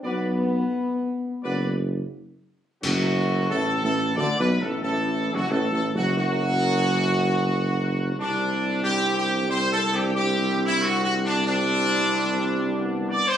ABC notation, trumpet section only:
X:1
M:4/4
L:1/16
Q:1/4=90
K:Dmix
V:1 name="Trumpet section"
[Bd]2 z6 [Bd]2 z6 | F4 A2 A2 (3d2 B2 A2 A3 F | (3A2 A2 F2 F12 | D4 G2 G2 (3c2 A2 G2 G3 E |
(3F2 F2 D2 D8- D2 d c |]